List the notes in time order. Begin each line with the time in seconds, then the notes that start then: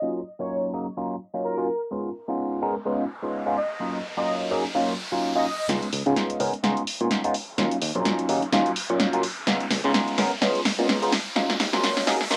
Already playing: D#5
0.02 F#3 A#3 C#4 D#4 F4
0.39 F#3 A#3 C#4 D#4 F4 C#5
0.73 F#3 A#3 C#4 D#4 G#4
0.97 F#3 A#3 C#4 D#4 F4
1.34 F#3 A#3 C#4 D#4 F4
1.44 A#4
1.57 F#3 A#3 C#4 D#4 F4
1.91 G#3 B3 C#4 D#4 F4, riser
2.28 G#3 B3 C#4 D#4 F4
2.62 G#3 B3 C#4 D#4 A#4
2.85 G#3 B3 C#4 D#4 F4
3.22 G#3 B3 C#4 D#4 F4
3.46 G#3 B3 C#4 D#4 F4
3.57 D#5
3.80 F#3 A#3 C#4 D#4 F4
4.17 F#3 A#3 C#4 D#4 F4 D#5
4.51 F#3 A#3 C#4 D#4 G#4
4.74 F#3 A#3 C#4 D#4 F4
5.12 F#3 A#3 C#4 D#4 F4
5.35 F#3 A#3 C#4 D#4 F4 D#5
5.69 C#2 G#3 B3 C#4 D#4 F4, snare, closed hi-hat, riser
5.83 closed hi-hat
5.93 C#2, open hi-hat
6.06 C#3 G#3 B3 C#4 D#4 F4
6.16 snare, closed hi-hat
6.30 closed hi-hat
6.39 C#2 G#3 B3 C#4 D#4 A#4, open hi-hat
6.53 closed hi-hat
6.63 C#2 G#3 B3 C#4 D#4 F4, snare, closed hi-hat
6.77 closed hi-hat
6.87 open hi-hat
7.00 A#2 G#3 B3 C#4 D#4 F4, closed hi-hat
7.11 snare, closed hi-hat
7.24 G#3 B3 C#4 D#4 F4, closed hi-hat
7.34 open hi-hat
7.58 D#2 F#3 A#3 C#4 D#4 F4, snare, closed hi-hat
7.72 closed hi-hat
7.82 D#2, open hi-hat
7.95 A#1 F#3 A#3 C#4 D#4 F4, closed hi-hat
8.05 snare, closed hi-hat
8.19 closed hi-hat
8.29 D#2 F#3 A#3 C#4 D#4 G#4, open hi-hat
8.42 closed hi-hat
8.52 D#2 F#3 A#3 C#4 D#4 F4, snare, closed hi-hat
8.66 closed hi-hat
8.76 open hi-hat
8.89 A#2 F#3 A#3 C#4 D#4 F4, closed hi-hat
9.00 snare, closed hi-hat
9.13 F#3 A#3 C#4 D#4 F4, closed hi-hat
9.23 open hi-hat
9.47 C#2 G#3 B3 C#4 D#4 F4, snare, closed hi-hat
9.61 closed hi-hat
9.71 C#2, snare, open hi-hat
9.84 C#3 G#3 B3 C#4 D#4 F4, closed hi-hat
9.94 snare, closed hi-hat
10.08 closed hi-hat
10.18 C#2 G#3 B3 C#4 D#4 A#4, snare, open hi-hat
10.31 closed hi-hat
10.41 C#2 G#3 B3 C#4 D#4 F4, snare, closed hi-hat
10.55 closed hi-hat
10.65 snare, open hi-hat
10.78 A#2 G#3 B3 C#4 D#4 F4, closed hi-hat
10.89 snare, closed hi-hat
11.02 G#3 B3 C#4 D#4 F4, closed hi-hat
11.12 snare, open hi-hat
11.36 D#2 F#3 A#3 C#4 D#4 F4, snare, closed hi-hat
11.50 snare, closed hi-hat
11.60 D#2, snare, open hi-hat
11.73 A#1 F#3 A#3 C#4 D#4 F4, snare, closed hi-hat
11.83 snare, closed hi-hat
11.97 snare, closed hi-hat
12.06 D#2 F#3 A#3 C#4 D#4 G#4, snare, open hi-hat
12.21 snare
12.30 D#2 F#3 A#3 C#4 D#4 F4, snare, closed hi-hat, swell